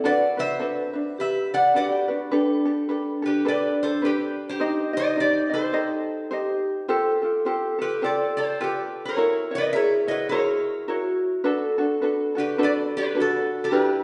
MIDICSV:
0, 0, Header, 1, 4, 480
1, 0, Start_track
1, 0, Key_signature, 1, "major"
1, 0, Tempo, 570342
1, 35, Time_signature, 4, 2, 24, 8
1, 11813, End_track
2, 0, Start_track
2, 0, Title_t, "Resonator guitar played with a steel bar"
2, 0, Program_c, 0, 25
2, 44, Note_on_c, 0, 74, 81
2, 48, Note_on_c, 0, 78, 91
2, 304, Note_off_c, 0, 74, 0
2, 330, Note_on_c, 0, 72, 75
2, 332, Note_off_c, 0, 78, 0
2, 335, Note_on_c, 0, 76, 97
2, 968, Note_off_c, 0, 72, 0
2, 1008, Note_off_c, 0, 76, 0
2, 1009, Note_on_c, 0, 71, 77
2, 1019, Note_on_c, 0, 76, 85
2, 1267, Note_off_c, 0, 71, 0
2, 1293, Note_on_c, 0, 74, 73
2, 1295, Note_off_c, 0, 76, 0
2, 1298, Note_on_c, 0, 78, 102
2, 1469, Note_off_c, 0, 74, 0
2, 1484, Note_on_c, 0, 74, 74
2, 1490, Note_off_c, 0, 78, 0
2, 1493, Note_on_c, 0, 79, 85
2, 1835, Note_off_c, 0, 74, 0
2, 1840, Note_off_c, 0, 79, 0
2, 2741, Note_on_c, 0, 71, 68
2, 2752, Note_on_c, 0, 67, 48
2, 2913, Note_off_c, 0, 71, 0
2, 2920, Note_off_c, 0, 67, 0
2, 2932, Note_on_c, 0, 74, 81
2, 2940, Note_on_c, 0, 71, 69
2, 3193, Note_off_c, 0, 71, 0
2, 3216, Note_off_c, 0, 74, 0
2, 3222, Note_on_c, 0, 72, 82
2, 3230, Note_on_c, 0, 69, 64
2, 3399, Note_off_c, 0, 69, 0
2, 3407, Note_on_c, 0, 71, 76
2, 3413, Note_off_c, 0, 72, 0
2, 3417, Note_on_c, 0, 67, 67
2, 3757, Note_off_c, 0, 71, 0
2, 3763, Note_off_c, 0, 67, 0
2, 3782, Note_on_c, 0, 72, 82
2, 3791, Note_on_c, 0, 67, 67
2, 4141, Note_off_c, 0, 67, 0
2, 4174, Note_off_c, 0, 72, 0
2, 4182, Note_on_c, 0, 75, 104
2, 4187, Note_on_c, 0, 72, 79
2, 4357, Note_off_c, 0, 72, 0
2, 4373, Note_off_c, 0, 75, 0
2, 4379, Note_on_c, 0, 67, 70
2, 4379, Note_on_c, 0, 74, 94
2, 4633, Note_off_c, 0, 67, 0
2, 4655, Note_off_c, 0, 74, 0
2, 4659, Note_on_c, 0, 72, 77
2, 4663, Note_on_c, 0, 69, 58
2, 5577, Note_off_c, 0, 72, 0
2, 5579, Note_off_c, 0, 69, 0
2, 6578, Note_on_c, 0, 71, 68
2, 6582, Note_on_c, 0, 67, 54
2, 6755, Note_off_c, 0, 67, 0
2, 6770, Note_on_c, 0, 74, 74
2, 6772, Note_off_c, 0, 71, 0
2, 6782, Note_on_c, 0, 69, 62
2, 7035, Note_off_c, 0, 69, 0
2, 7040, Note_off_c, 0, 74, 0
2, 7043, Note_on_c, 0, 72, 84
2, 7055, Note_on_c, 0, 69, 67
2, 7231, Note_off_c, 0, 69, 0
2, 7242, Note_on_c, 0, 71, 75
2, 7244, Note_off_c, 0, 72, 0
2, 7268, Note_on_c, 0, 67, 59
2, 7596, Note_off_c, 0, 71, 0
2, 7610, Note_off_c, 0, 67, 0
2, 7620, Note_on_c, 0, 73, 79
2, 7648, Note_on_c, 0, 70, 66
2, 8024, Note_off_c, 0, 70, 0
2, 8035, Note_off_c, 0, 73, 0
2, 8038, Note_on_c, 0, 75, 99
2, 8063, Note_on_c, 0, 71, 80
2, 8183, Note_off_c, 0, 75, 0
2, 8186, Note_on_c, 0, 76, 102
2, 8200, Note_off_c, 0, 71, 0
2, 8213, Note_on_c, 0, 73, 74
2, 8470, Note_off_c, 0, 73, 0
2, 8482, Note_off_c, 0, 76, 0
2, 8485, Note_on_c, 0, 75, 87
2, 8508, Note_on_c, 0, 71, 63
2, 8659, Note_off_c, 0, 75, 0
2, 8662, Note_on_c, 0, 73, 82
2, 8678, Note_off_c, 0, 71, 0
2, 8687, Note_on_c, 0, 70, 54
2, 9400, Note_off_c, 0, 73, 0
2, 9412, Note_off_c, 0, 70, 0
2, 10420, Note_on_c, 0, 67, 62
2, 10432, Note_on_c, 0, 71, 80
2, 10593, Note_off_c, 0, 67, 0
2, 10599, Note_off_c, 0, 71, 0
2, 10630, Note_on_c, 0, 71, 80
2, 10640, Note_on_c, 0, 74, 98
2, 10702, Note_off_c, 0, 71, 0
2, 10711, Note_off_c, 0, 74, 0
2, 10914, Note_on_c, 0, 67, 77
2, 10923, Note_on_c, 0, 71, 91
2, 11080, Note_off_c, 0, 67, 0
2, 11103, Note_off_c, 0, 71, 0
2, 11111, Note_on_c, 0, 66, 62
2, 11121, Note_on_c, 0, 69, 86
2, 11449, Note_off_c, 0, 66, 0
2, 11479, Note_on_c, 0, 67, 59
2, 11481, Note_off_c, 0, 69, 0
2, 11485, Note_on_c, 0, 71, 83
2, 11813, Note_off_c, 0, 67, 0
2, 11813, Note_off_c, 0, 71, 0
2, 11813, End_track
3, 0, Start_track
3, 0, Title_t, "Ukulele"
3, 0, Program_c, 1, 24
3, 32, Note_on_c, 1, 69, 70
3, 36, Note_on_c, 1, 62, 72
3, 41, Note_on_c, 1, 66, 74
3, 48, Note_on_c, 1, 71, 85
3, 303, Note_off_c, 1, 71, 0
3, 311, Note_off_c, 1, 66, 0
3, 313, Note_on_c, 1, 71, 51
3, 318, Note_off_c, 1, 69, 0
3, 320, Note_off_c, 1, 62, 0
3, 321, Note_on_c, 1, 66, 50
3, 329, Note_on_c, 1, 62, 44
3, 497, Note_off_c, 1, 62, 0
3, 502, Note_on_c, 1, 69, 58
3, 504, Note_off_c, 1, 66, 0
3, 507, Note_on_c, 1, 62, 54
3, 508, Note_off_c, 1, 71, 0
3, 515, Note_on_c, 1, 66, 67
3, 518, Note_on_c, 1, 71, 53
3, 776, Note_off_c, 1, 71, 0
3, 783, Note_off_c, 1, 69, 0
3, 787, Note_on_c, 1, 71, 57
3, 792, Note_off_c, 1, 62, 0
3, 799, Note_off_c, 1, 66, 0
3, 802, Note_on_c, 1, 62, 45
3, 1463, Note_off_c, 1, 71, 0
3, 1466, Note_on_c, 1, 69, 55
3, 1469, Note_off_c, 1, 62, 0
3, 1472, Note_on_c, 1, 62, 53
3, 1479, Note_on_c, 1, 66, 63
3, 1481, Note_on_c, 1, 71, 65
3, 1740, Note_off_c, 1, 71, 0
3, 1750, Note_off_c, 1, 66, 0
3, 1750, Note_on_c, 1, 71, 53
3, 1755, Note_off_c, 1, 69, 0
3, 1758, Note_off_c, 1, 62, 0
3, 1760, Note_on_c, 1, 66, 48
3, 1771, Note_on_c, 1, 62, 42
3, 1938, Note_off_c, 1, 71, 0
3, 1943, Note_off_c, 1, 62, 0
3, 1948, Note_on_c, 1, 71, 85
3, 1953, Note_on_c, 1, 62, 75
3, 1956, Note_off_c, 1, 66, 0
3, 1960, Note_on_c, 1, 67, 88
3, 1961, Note_on_c, 1, 69, 86
3, 2224, Note_off_c, 1, 69, 0
3, 2233, Note_off_c, 1, 67, 0
3, 2234, Note_on_c, 1, 69, 51
3, 2236, Note_off_c, 1, 71, 0
3, 2239, Note_off_c, 1, 62, 0
3, 2243, Note_on_c, 1, 67, 52
3, 2251, Note_on_c, 1, 62, 45
3, 2424, Note_off_c, 1, 62, 0
3, 2426, Note_off_c, 1, 67, 0
3, 2430, Note_on_c, 1, 71, 58
3, 2433, Note_off_c, 1, 69, 0
3, 2434, Note_on_c, 1, 62, 63
3, 2440, Note_on_c, 1, 67, 62
3, 2449, Note_on_c, 1, 69, 67
3, 2702, Note_off_c, 1, 69, 0
3, 2712, Note_on_c, 1, 69, 57
3, 2713, Note_off_c, 1, 67, 0
3, 2717, Note_off_c, 1, 71, 0
3, 2719, Note_off_c, 1, 62, 0
3, 2723, Note_on_c, 1, 67, 50
3, 2728, Note_on_c, 1, 62, 40
3, 2897, Note_off_c, 1, 62, 0
3, 2899, Note_off_c, 1, 67, 0
3, 2903, Note_on_c, 1, 71, 60
3, 2905, Note_off_c, 1, 69, 0
3, 2907, Note_on_c, 1, 62, 76
3, 2909, Note_on_c, 1, 67, 72
3, 2915, Note_on_c, 1, 69, 76
3, 3373, Note_off_c, 1, 71, 0
3, 3382, Note_off_c, 1, 62, 0
3, 3383, Note_on_c, 1, 71, 57
3, 3392, Note_off_c, 1, 69, 0
3, 3392, Note_on_c, 1, 62, 55
3, 3394, Note_off_c, 1, 67, 0
3, 3397, Note_on_c, 1, 67, 55
3, 3402, Note_on_c, 1, 69, 61
3, 3866, Note_off_c, 1, 71, 0
3, 3869, Note_on_c, 1, 72, 75
3, 3871, Note_off_c, 1, 62, 0
3, 3874, Note_on_c, 1, 63, 67
3, 3875, Note_off_c, 1, 67, 0
3, 3878, Note_off_c, 1, 69, 0
3, 3878, Note_on_c, 1, 67, 80
3, 3881, Note_on_c, 1, 75, 89
3, 4141, Note_off_c, 1, 75, 0
3, 4151, Note_off_c, 1, 67, 0
3, 4151, Note_on_c, 1, 75, 54
3, 4157, Note_off_c, 1, 72, 0
3, 4159, Note_off_c, 1, 63, 0
3, 4162, Note_on_c, 1, 67, 44
3, 4172, Note_on_c, 1, 63, 39
3, 4338, Note_off_c, 1, 63, 0
3, 4342, Note_on_c, 1, 72, 51
3, 4347, Note_off_c, 1, 67, 0
3, 4348, Note_on_c, 1, 63, 58
3, 4352, Note_off_c, 1, 75, 0
3, 4357, Note_on_c, 1, 67, 57
3, 4361, Note_on_c, 1, 75, 63
3, 4615, Note_off_c, 1, 75, 0
3, 4620, Note_off_c, 1, 67, 0
3, 4625, Note_on_c, 1, 75, 52
3, 4630, Note_off_c, 1, 63, 0
3, 4630, Note_on_c, 1, 67, 50
3, 4634, Note_off_c, 1, 72, 0
3, 4640, Note_on_c, 1, 63, 45
3, 4816, Note_off_c, 1, 63, 0
3, 4817, Note_off_c, 1, 67, 0
3, 4818, Note_off_c, 1, 75, 0
3, 4820, Note_on_c, 1, 72, 69
3, 4826, Note_on_c, 1, 63, 77
3, 4827, Note_on_c, 1, 67, 80
3, 4829, Note_on_c, 1, 75, 78
3, 5305, Note_off_c, 1, 72, 0
3, 5307, Note_off_c, 1, 63, 0
3, 5308, Note_on_c, 1, 72, 71
3, 5313, Note_off_c, 1, 75, 0
3, 5317, Note_on_c, 1, 63, 68
3, 5318, Note_off_c, 1, 67, 0
3, 5321, Note_on_c, 1, 67, 73
3, 5330, Note_on_c, 1, 75, 68
3, 5791, Note_off_c, 1, 75, 0
3, 5793, Note_off_c, 1, 63, 0
3, 5794, Note_off_c, 1, 72, 0
3, 5794, Note_on_c, 1, 72, 80
3, 5796, Note_on_c, 1, 65, 78
3, 5799, Note_off_c, 1, 67, 0
3, 5799, Note_on_c, 1, 67, 89
3, 5806, Note_on_c, 1, 69, 96
3, 6064, Note_off_c, 1, 69, 0
3, 6074, Note_off_c, 1, 67, 0
3, 6074, Note_on_c, 1, 69, 52
3, 6080, Note_off_c, 1, 72, 0
3, 6081, Note_off_c, 1, 65, 0
3, 6084, Note_on_c, 1, 67, 52
3, 6095, Note_on_c, 1, 65, 46
3, 6269, Note_off_c, 1, 65, 0
3, 6271, Note_off_c, 1, 67, 0
3, 6272, Note_on_c, 1, 72, 56
3, 6274, Note_off_c, 1, 69, 0
3, 6279, Note_on_c, 1, 65, 55
3, 6282, Note_on_c, 1, 67, 74
3, 6291, Note_on_c, 1, 69, 72
3, 6542, Note_off_c, 1, 69, 0
3, 6552, Note_on_c, 1, 69, 53
3, 6555, Note_off_c, 1, 67, 0
3, 6559, Note_off_c, 1, 72, 0
3, 6562, Note_off_c, 1, 65, 0
3, 6565, Note_on_c, 1, 67, 46
3, 6575, Note_on_c, 1, 65, 45
3, 6741, Note_off_c, 1, 65, 0
3, 6748, Note_off_c, 1, 67, 0
3, 6748, Note_on_c, 1, 72, 67
3, 6752, Note_on_c, 1, 65, 72
3, 6753, Note_off_c, 1, 69, 0
3, 6758, Note_on_c, 1, 67, 76
3, 6764, Note_on_c, 1, 69, 70
3, 7231, Note_off_c, 1, 65, 0
3, 7233, Note_off_c, 1, 72, 0
3, 7235, Note_off_c, 1, 67, 0
3, 7241, Note_off_c, 1, 69, 0
3, 7241, Note_on_c, 1, 65, 64
3, 7246, Note_on_c, 1, 67, 67
3, 7251, Note_on_c, 1, 69, 60
3, 7710, Note_off_c, 1, 67, 0
3, 7714, Note_on_c, 1, 70, 72
3, 7716, Note_off_c, 1, 65, 0
3, 7719, Note_on_c, 1, 66, 66
3, 7722, Note_off_c, 1, 69, 0
3, 7725, Note_on_c, 1, 64, 74
3, 7730, Note_on_c, 1, 73, 78
3, 7994, Note_off_c, 1, 73, 0
3, 8000, Note_off_c, 1, 70, 0
3, 8003, Note_off_c, 1, 66, 0
3, 8004, Note_off_c, 1, 64, 0
3, 8005, Note_on_c, 1, 73, 53
3, 8014, Note_on_c, 1, 64, 43
3, 8023, Note_on_c, 1, 66, 38
3, 8196, Note_off_c, 1, 66, 0
3, 8199, Note_off_c, 1, 73, 0
3, 8202, Note_on_c, 1, 70, 48
3, 8204, Note_off_c, 1, 64, 0
3, 8206, Note_on_c, 1, 66, 54
3, 8216, Note_on_c, 1, 64, 55
3, 8218, Note_on_c, 1, 73, 59
3, 8469, Note_off_c, 1, 73, 0
3, 8476, Note_off_c, 1, 70, 0
3, 8479, Note_on_c, 1, 73, 49
3, 8481, Note_off_c, 1, 64, 0
3, 8486, Note_off_c, 1, 66, 0
3, 8491, Note_on_c, 1, 64, 47
3, 8497, Note_on_c, 1, 66, 43
3, 8667, Note_off_c, 1, 66, 0
3, 8672, Note_off_c, 1, 64, 0
3, 8675, Note_off_c, 1, 73, 0
3, 8677, Note_on_c, 1, 66, 75
3, 8679, Note_on_c, 1, 70, 64
3, 8683, Note_on_c, 1, 64, 76
3, 8686, Note_on_c, 1, 73, 80
3, 9146, Note_off_c, 1, 70, 0
3, 9155, Note_off_c, 1, 66, 0
3, 9156, Note_on_c, 1, 70, 54
3, 9157, Note_off_c, 1, 64, 0
3, 9158, Note_on_c, 1, 66, 62
3, 9160, Note_off_c, 1, 73, 0
3, 9167, Note_on_c, 1, 64, 61
3, 9170, Note_on_c, 1, 73, 58
3, 9624, Note_off_c, 1, 73, 0
3, 9627, Note_off_c, 1, 66, 0
3, 9628, Note_on_c, 1, 71, 71
3, 9630, Note_on_c, 1, 62, 79
3, 9636, Note_off_c, 1, 64, 0
3, 9637, Note_off_c, 1, 70, 0
3, 9639, Note_on_c, 1, 66, 81
3, 9642, Note_on_c, 1, 69, 89
3, 9904, Note_off_c, 1, 69, 0
3, 9909, Note_off_c, 1, 66, 0
3, 9911, Note_off_c, 1, 71, 0
3, 9914, Note_on_c, 1, 69, 57
3, 9918, Note_off_c, 1, 62, 0
3, 9920, Note_on_c, 1, 66, 50
3, 9928, Note_on_c, 1, 62, 39
3, 10107, Note_off_c, 1, 62, 0
3, 10109, Note_off_c, 1, 69, 0
3, 10113, Note_on_c, 1, 71, 55
3, 10114, Note_off_c, 1, 66, 0
3, 10117, Note_on_c, 1, 62, 55
3, 10124, Note_on_c, 1, 66, 64
3, 10131, Note_on_c, 1, 69, 58
3, 10385, Note_off_c, 1, 69, 0
3, 10391, Note_off_c, 1, 71, 0
3, 10395, Note_on_c, 1, 69, 53
3, 10396, Note_off_c, 1, 66, 0
3, 10401, Note_off_c, 1, 62, 0
3, 10406, Note_on_c, 1, 66, 48
3, 10415, Note_on_c, 1, 62, 39
3, 10585, Note_off_c, 1, 62, 0
3, 10586, Note_off_c, 1, 66, 0
3, 10586, Note_off_c, 1, 69, 0
3, 10589, Note_on_c, 1, 71, 65
3, 10595, Note_on_c, 1, 62, 71
3, 10596, Note_on_c, 1, 66, 81
3, 10599, Note_on_c, 1, 69, 81
3, 11063, Note_off_c, 1, 71, 0
3, 11066, Note_on_c, 1, 71, 57
3, 11068, Note_off_c, 1, 66, 0
3, 11069, Note_off_c, 1, 69, 0
3, 11070, Note_off_c, 1, 62, 0
3, 11073, Note_on_c, 1, 62, 55
3, 11078, Note_on_c, 1, 66, 63
3, 11079, Note_on_c, 1, 69, 58
3, 11541, Note_off_c, 1, 69, 0
3, 11543, Note_off_c, 1, 62, 0
3, 11544, Note_on_c, 1, 67, 77
3, 11547, Note_on_c, 1, 62, 70
3, 11548, Note_off_c, 1, 71, 0
3, 11549, Note_off_c, 1, 66, 0
3, 11551, Note_on_c, 1, 71, 87
3, 11553, Note_on_c, 1, 64, 84
3, 11813, Note_off_c, 1, 62, 0
3, 11813, Note_off_c, 1, 64, 0
3, 11813, Note_off_c, 1, 67, 0
3, 11813, Note_off_c, 1, 71, 0
3, 11813, End_track
4, 0, Start_track
4, 0, Title_t, "Vibraphone"
4, 0, Program_c, 2, 11
4, 45, Note_on_c, 2, 71, 89
4, 997, Note_on_c, 2, 67, 82
4, 1029, Note_off_c, 2, 71, 0
4, 1727, Note_off_c, 2, 67, 0
4, 1953, Note_on_c, 2, 62, 80
4, 3841, Note_off_c, 2, 62, 0
4, 3874, Note_on_c, 2, 63, 85
4, 5313, Note_on_c, 2, 67, 80
4, 5359, Note_off_c, 2, 63, 0
4, 5798, Note_on_c, 2, 69, 89
4, 5810, Note_off_c, 2, 67, 0
4, 7717, Note_on_c, 2, 70, 92
4, 7776, Note_off_c, 2, 69, 0
4, 8203, Note_on_c, 2, 68, 87
4, 8212, Note_off_c, 2, 70, 0
4, 9167, Note_on_c, 2, 66, 75
4, 9189, Note_off_c, 2, 68, 0
4, 9640, Note_on_c, 2, 69, 89
4, 9657, Note_off_c, 2, 66, 0
4, 11070, Note_on_c, 2, 66, 84
4, 11120, Note_off_c, 2, 69, 0
4, 11548, Note_on_c, 2, 67, 95
4, 11567, Note_off_c, 2, 66, 0
4, 11813, Note_off_c, 2, 67, 0
4, 11813, End_track
0, 0, End_of_file